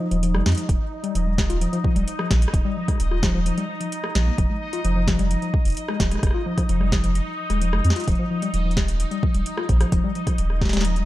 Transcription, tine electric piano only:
0.11 F3
0.23 F3
0.34 G3
0.57 F3
1.04 G3
1.15 F3
1.27 G3
1.50 F4
1.61 F3
1.73 F3
1.84 F3
1.96 G3
2.19 F3
2.65 G3
2.77 F3
2.88 G3
3.11 F4
3.23 F3
3.34 F3
3.46 F3
3.57 G3
3.81 F3
4.15 F3
4.27 A#3
4.38 F3
4.50 G#3
4.73 F4
4.85 F3
4.96 F3
5.08 F3
5.19 G3
5.31 F3
5.42 F3
5.88 G#3
6.00 F3
6.11 G#3
6.34 F4
6.46 F3
6.58 F3
6.69 F3
6.81 G3
6.92 F3
7.04 F3
7.50 G#3
7.61 F3
7.73 G#3
7.96 F4
8.08 F3
8.19 F3
8.31 F3
8.42 G3
8.54 F3
8.65 F3
9.11 G3
9.23 F3
9.35 G3
9.58 F4
9.69 F3
9.81 F3
9.92 F3
10.04 G3
10.15 F3
10.27 F3
10.73 G3
10.85 F3
10.96 G3

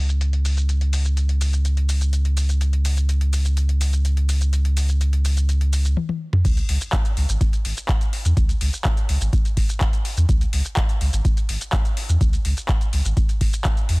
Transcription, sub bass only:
Already playing: C#2
6.45 C#2
6.69 C#2
7.17 C#2
7.29 G#1
7.65 G#1
8.25 E2
8.37 C#2
8.61 C#2
9.09 C#2
9.21 G#1
9.57 G#1
10.17 E2
10.29 C#2
10.53 C#2
11.01 C#2
11.13 G#1
11.49 G#1
12.09 E2
12.21 C#2
12.45 C#2
12.93 C#2
13.05 G#1
13.41 G#1
13.89 E2

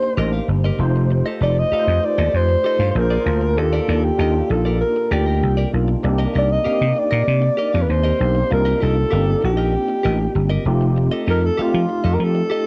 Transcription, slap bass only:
0.17 A1
0.48 G1
0.79 F1
1.41 F1
1.72 muted slap bass stroke
1.87 F2
2.18 D#2
2.34 F2
2.79 G2
2.95 A#1
3.26 D2
3.57 D#2
3.88 D#2
4.19 D#2
4.50 A#1
5.11 D2
5.43 C2
5.74 B1
6.04 C2
6.35 C2
6.66 muted slap bass stroke
6.81 C3
7.12 A#2
7.27 C3
7.74 F2
7.89 D#2
8.20 B1
8.51 C2
8.82 C2
9.12 G1
9.44 A#1
10.05 A1
10.35 G1
10.65 F1
11.27 F2
11.59 muted slap bass stroke
11.74 F3
12.04 F2
12.20 F3

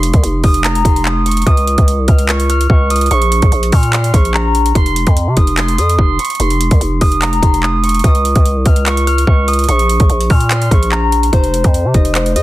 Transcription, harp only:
Already playing: C6 D#6
0.44 D#6
0.64 A#5
0.85 C6
1.06 D#6
1.26 C#6
1.47 D#6
2.08 F6
2.29 C#6
2.49 F6
2.70 C#6
2.90 D#6
3.11 C#6
3.73 F6
3.93 C6
4.14 C#6
4.34 A#5
4.76 C6
5.37 D#6
5.58 C6
5.78 D#6
5.99 C6
6.19 C#6
6.40 C6
7.01 D#6
7.22 A#5
7.43 C6
7.63 D#6
7.83 C#6
8.04 D#6
8.66 F6
8.86 C#6
9.07 F6
9.28 C#6
9.48 D#6
9.69 C#6
10.30 F6
10.51 C6
10.71 C#6
10.92 A#5
11.33 C5
11.94 D#5
12.15 C5
12.36 D#5

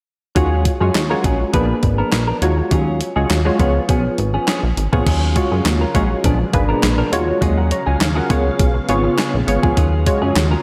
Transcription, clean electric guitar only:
0.35 F#3 C#4 F4 G#4
0.65 muted clean electric guitar stroke
0.81 F#3 C#4 F4 G#4
0.95 muted clean electric guitar stroke
1.10 F#3 C#4 F4 A#4
1.24 F#3 C#4 F4 G#4
1.40 muted clean electric guitar stroke
1.53 F3 B3 D4 G#4
1.69 muted clean electric guitar stroke
1.83 muted clean electric guitar stroke
1.98 F3 B3 D4 A#4
2.12 muted clean electric guitar stroke
2.28 F3 B3 D4 A#4
2.41 muted clean electric guitar stroke
2.57 muted clean electric guitar stroke
2.71 F#3 C#4 F4 G#4
3.00 muted clean electric guitar stroke
3.16 F#3 C#4 F4 G#4
3.30 muted clean electric guitar stroke
3.45 F#3 C#4 F4 G#4
3.59 F3 B3 C#4 G#4
3.75 muted clean electric guitar stroke
3.89 F3 B3 C#4 G#4
4.05 muted clean electric guitar stroke
4.18 muted clean electric guitar stroke
4.34 F3 B3 C#4 G#4
4.48 F3 B3 C#4 G#4
4.63 muted clean electric guitar stroke
4.77 muted clean electric guitar stroke
4.93 F3 B3 C#4 G#4
5.07 F#3 C#4 F4 G#4
5.52 F#3 C#4 F4 G#4
5.81 F#3 C#4 F4 A#4
5.94 F#3 C#4 F4 G#4
6.10 muted clean electric guitar stroke
6.24 F3 B3 D4 G#4
6.40 muted clean electric guitar stroke
6.53 muted clean electric guitar stroke
6.69 F3 B3 D4 A#4
6.83 muted clean electric guitar stroke
6.98 F3 B3 D4 A#4
7.12 muted clean electric guitar stroke
7.27 muted clean electric guitar stroke
7.41 F#3 C#4 F4 G#4
7.71 muted clean electric guitar stroke
7.86 F#3 C#4 F4 G#4
8.15 F#3 C#4 F4 G#4
8.29 G#3 B3 F4 G#4
8.45 muted clean electric guitar stroke
8.59 muted clean electric guitar stroke
8.74 muted clean electric guitar stroke
9.04 muted clean electric guitar stroke
9.18 G#3 B3 F4 G#4
9.33 muted clean electric guitar stroke
9.47 muted clean electric guitar stroke
9.63 G#3 B3 F4 G#4
9.77 F#3 C#4 F4 G#4
10.06 muted clean electric guitar stroke
10.22 F#3 C#4 F4 G#4
10.36 muted clean electric guitar stroke
10.51 F#3 C#4 F4 A#4

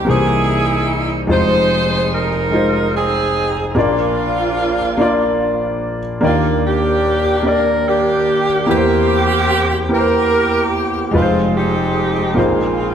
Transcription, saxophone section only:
0.09 D#4 E4 G#4
1.32 D#4 G#4 C5
2.14 D#4 A#4
2.96 C4 D#4 G#4
3.78 A#3 D4 F4
6.25 A#3 D4 F4
6.66 A#3 D4 G4
7.48 A#4
7.88 A#3 D4 G4
8.69 A#3 C4 G4
9.93 G4 A#4
11.15 G#3 C4 F4
11.57 C4 D#4 G4
12.38 G#3 C4 F4

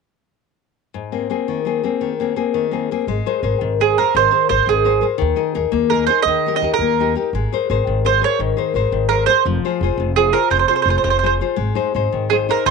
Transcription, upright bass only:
3.07 G#1
3.43 G#1
3.62 G#1
4.15 G#1
4.50 G#1
4.67 G#1
5.21 D#2
5.56 D#2
5.73 D#2
6.25 D#2
6.61 D#2
6.79 D#2
7.33 G#1
7.70 G#1
7.87 G#1
8.39 G#1
8.74 G#1
8.92 G#1
9.45 F1
9.81 F1
9.97 F1
10.51 F1
10.85 F1
11.04 F1
11.58 G#1
11.95 G#1
12.14 G#1
12.66 G#1

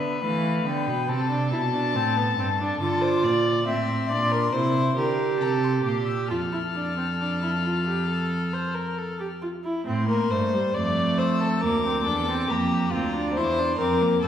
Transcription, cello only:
Already playing: D3
0.24 E3
0.65 D3
0.88 B2
1.09 C3
1.51 B2
1.94 A2
2.38 G2
2.81 D3
3.24 A#2
3.67 A2
4.10 A#2
4.53 C3
4.97 D3
5.41 C3
5.85 A#2
6.30 F2
9.87 A2
10.31 G2
10.75 F2
11.63 D2
12.06 E2
12.51 F2
12.94 D2
13.38 E2
13.80 F2
14.23 G2

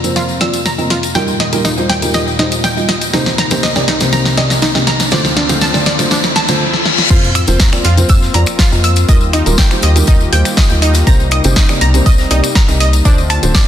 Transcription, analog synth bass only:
7.10 F2
7.48 F1
7.85 F2
8.10 F2
8.34 F2
8.72 F2
9.09 D#2
9.46 D#1
9.83 D#2
10.08 D#2
10.32 D#2
10.70 D#2
11.07 C2
11.45 G1
11.81 C2
12.06 C2
12.31 C2
12.68 C2
13.05 D2
13.43 D1

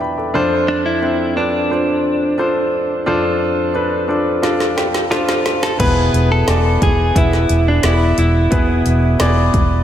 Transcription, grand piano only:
Already playing: D4 E4 G4 B4 D5 E5 G5 A5
0.00 B5
0.18 A4 D5
0.34 F2 F3 D4 F4 A4 C5
1.02 C4 D4 A4 C5
1.36 D4 F4 A4 B4
1.70 D4 F4 A4 C5
2.38 D4 F4 A4 C5
3.06 F2 F3 D4 F4 A4 C5
3.74 D4 F4 A4 B4
4.08 D4 F4 A4 C5 D5
4.42 D4 F4 A4 D5 F5
4.77 G5
5.10 D4 F4 A4 C5 A5
5.45 C6
5.79 B2 B3 E4 G#4 B4
6.47 B3 E4 D5 G#5
7.15 B3 E4 G#4 B4
7.83 B3 E4 G#4 D5
8.51 B2 B3 E4 G#4 B4
9.19 B3 E4 G#4 D5

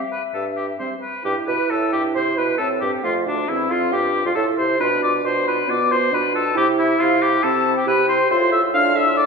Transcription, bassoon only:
0.34 G2
1.25 G2
1.48 B2
1.70 A2
1.92 G2
2.15 C3
2.37 B2
2.59 A2
2.82 G2
3.04 F2
3.27 D2
3.49 E2
3.71 F2
3.93 G2
4.25 F2
4.36 A2
4.58 C3
4.81 B2
5.24 B2
5.69 B2
6.12 B2
6.56 C3
7.00 C3
7.44 C3
7.87 C3
8.31 A2

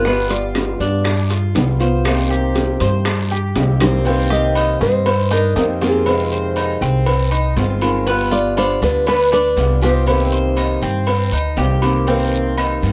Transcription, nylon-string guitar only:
0.07 B4
0.30 D5
4.32 D#5
4.82 C5
5.33 A#4
5.58 A#4
5.83 G#4
8.32 D5
8.58 C5
8.83 B4
9.08 B4
9.33 B4
9.84 C5

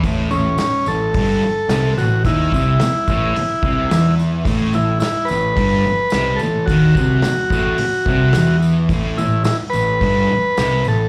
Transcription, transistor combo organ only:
0.31 C#4
0.59 C#4
0.88 A4
1.98 F#4
2.26 E4
4.75 E4
5.00 E4
5.25 B4
6.36 A4
6.66 F#4
9.18 E4
9.44 E4
9.70 B4
10.88 A4

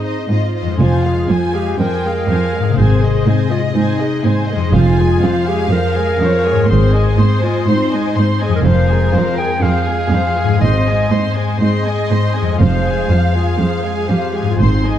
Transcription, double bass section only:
0.80 F1
2.79 G#1
4.74 F1
6.69 G#1
8.65 F1
10.61 G#1
12.61 F1
14.59 G#1

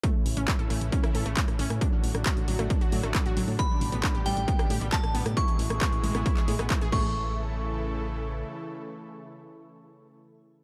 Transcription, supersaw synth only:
0.04 A2 C#3 E3 C#4 E4
1.81 D3 F#3 D4 F#4
3.59 B2 G3 G4
5.37 E3 G#3 E4 G#4
6.92 C#3 E3 A3 E4 A4

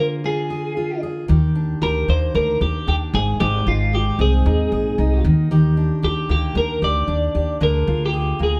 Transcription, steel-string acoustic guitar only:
Already playing: D3 F4 G#4
0.00 A#3
0.24 F4
0.50 G#4
0.77 F4
1.03 G#4
1.28 D#3 G4
1.55 D4
1.82 G4
2.09 A#3
2.35 D4
2.61 G4
2.88 D4
3.14 G#2
3.40 G#2 G#4
3.67 D#4
3.93 G#4
4.19 C4
4.46 D#4
4.72 G#4
4.98 D#4
5.25 D#3
5.51 D#3 G4
5.77 D4
6.02 G4
6.29 A#3
6.56 D4
6.82 G4
7.08 D4
7.35 G4
7.61 D3 G#4
7.87 F4
8.13 G#4
8.39 A#3

